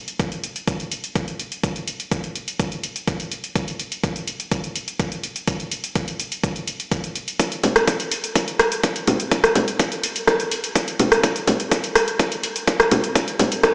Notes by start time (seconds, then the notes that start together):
0.08 closed hi-hat
0.20 kick, closed hi-hat
0.32 closed hi-hat
0.44 closed hi-hat
0.56 closed hi-hat
0.68 kick, closed hi-hat
0.80 closed hi-hat
0.92 closed hi-hat
1.04 closed hi-hat
1.16 kick, closed hi-hat
1.28 closed hi-hat
1.40 closed hi-hat
1.52 closed hi-hat
1.63 kick, closed hi-hat
1.76 closed hi-hat
1.88 closed hi-hat
2.00 closed hi-hat
2.12 kick, closed hi-hat
2.24 closed hi-hat
2.35 closed hi-hat
2.48 closed hi-hat
2.60 kick, closed hi-hat
2.72 closed hi-hat
2.83 closed hi-hat
2.96 closed hi-hat
3.08 kick, closed hi-hat
3.20 closed hi-hat
3.32 closed hi-hat
3.44 closed hi-hat
3.56 kick, closed hi-hat
3.68 closed hi-hat
3.79 closed hi-hat
3.92 closed hi-hat
4.04 kick, closed hi-hat
4.16 closed hi-hat
4.28 closed hi-hat
4.40 closed hi-hat
4.51 kick, closed hi-hat
4.64 closed hi-hat
4.76 closed hi-hat
4.88 closed hi-hat
5.00 kick, closed hi-hat
5.12 closed hi-hat
5.23 closed hi-hat
5.36 closed hi-hat
5.47 kick, closed hi-hat
5.60 closed hi-hat
5.71 closed hi-hat
5.84 closed hi-hat
5.95 kick, closed hi-hat
6.08 closed hi-hat
6.20 closed hi-hat
6.32 closed hi-hat
6.44 kick, closed hi-hat
6.56 closed hi-hat
6.68 closed hi-hat
6.80 closed hi-hat
6.92 kick, closed hi-hat
7.04 closed hi-hat
7.16 closed hi-hat
7.28 closed hi-hat
7.39 kick, closed hi-hat
7.52 closed hi-hat
7.64 open hi-hat, low conga
7.76 cross-stick, closed hi-hat
7.88 kick, closed hi-hat
8.00 closed hi-hat
8.12 open hi-hat
8.24 closed hi-hat
8.35 kick, closed hi-hat
8.48 closed hi-hat
8.59 cross-stick, open hi-hat
8.72 closed hi-hat
8.83 kick, closed hi-hat
8.96 closed hi-hat
9.07 open hi-hat, low conga
9.20 closed hi-hat
9.31 kick, closed hi-hat
9.44 cross-stick, closed hi-hat
9.55 open hi-hat, low conga
9.68 closed hi-hat
9.79 kick, closed hi-hat
9.92 closed hi-hat
10.04 open hi-hat
10.16 closed hi-hat
10.27 kick, cross-stick, closed hi-hat
10.40 closed hi-hat
10.51 open hi-hat
10.64 closed hi-hat
10.75 kick, closed hi-hat
10.88 closed hi-hat
10.99 open hi-hat, low conga
11.12 cross-stick, closed hi-hat
11.23 kick, closed hi-hat
11.36 closed hi-hat
11.47 open hi-hat, low conga
11.60 closed hi-hat
11.71 kick, closed hi-hat
11.84 closed hi-hat
11.96 cross-stick, open hi-hat
12.08 closed hi-hat
12.19 kick, closed hi-hat
12.32 closed hi-hat
12.43 open hi-hat
12.56 closed hi-hat
12.67 kick, closed hi-hat
12.80 cross-stick, closed hi-hat
12.91 open hi-hat, low conga
13.04 closed hi-hat
13.15 kick, closed hi-hat
13.28 closed hi-hat
13.39 open hi-hat, low conga
13.52 closed hi-hat
13.63 kick, cross-stick, closed hi-hat